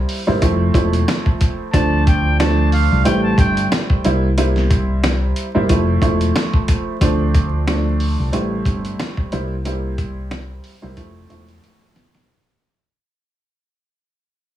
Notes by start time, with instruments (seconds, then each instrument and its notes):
Already playing: upright piano G3 A#3 C4 E4
0.09 open hi-hat
0.27 fingered electric bass G1, upright piano G3 A#3 C4 E4
0.41 fingered electric bass F1, upright piano F3 A3 C4 E4, kick, closed hi-hat
0.74 fingered electric bass E1, upright piano F3 A3 C4 E4, kick, closed hi-hat
0.93 closed hi-hat
1.08 snare, closed hi-hat
1.26 kick
1.41 kick, closed hi-hat
1.72 fingered electric bass D2, upright piano F3 A3 C4 D4, muted trumpet A5, kick, closed hi-hat
2.07 muted trumpet G5, kick, closed hi-hat
2.39 upright piano F3 A3 C4 D4, muted trumpet A5, snare, closed hi-hat
2.72 muted trumpet F5, open hi-hat
2.92 fingered electric bass C2
3.05 fingered electric bass A1, upright piano G3 A3 C4 E4, muted trumpet G5, closed hi-hat
3.23 muted trumpet A5
3.38 fingered electric bass G1, muted trumpet G5, kick, closed hi-hat
3.57 closed hi-hat
3.72 snare, closed hi-hat
3.90 kick
4.04 fingered electric bass C2, upright piano G3 A#3 C4 E4, closed hi-hat
4.38 upright piano G3 A#3 C4 E4, closed hi-hat
4.56 snare
4.71 kick, closed hi-hat
5.04 snare, closed hi-hat
5.36 closed hi-hat
5.54 fingered electric bass G1, upright piano G3 A#3 C4 E4
5.69 fingered electric bass F1, upright piano F3 A3 C4 E4, kick, closed hi-hat
6.02 fingered electric bass E1, upright piano F3 A3 C4 E4, kick, closed hi-hat
6.21 closed hi-hat
6.36 snare, closed hi-hat
6.54 kick
6.68 kick, closed hi-hat
7.01 fingered electric bass D2, upright piano F3 A3 C4 D4, kick, closed hi-hat
7.34 kick, closed hi-hat
7.67 upright piano F3 A3 C4 D4, snare, closed hi-hat
8.00 open hi-hat
8.19 fingered electric bass C2
8.32 fingered electric bass A1, upright piano G3 A3 C4 E4, closed hi-hat
8.65 fingered electric bass G1, kick, closed hi-hat
8.85 closed hi-hat
8.99 snare, closed hi-hat
9.17 kick
9.32 fingered electric bass C2, upright piano G3 A#3 C4 E4, closed hi-hat
9.65 upright piano G3 A#3 C4 E4, closed hi-hat
9.98 kick, closed hi-hat
10.31 snare, closed hi-hat
10.64 open hi-hat
10.82 fingered electric bass C2, upright piano G3 A#3 C4 E4
10.96 fingered electric bass F1, upright piano F3 A3 C4 E4, kick, closed hi-hat
11.29 fingered electric bass E1, upright piano F3 A3 C4 E4, closed hi-hat
11.48 closed hi-hat
11.64 closed hi-hat
11.96 snare, closed hi-hat
12.15 snare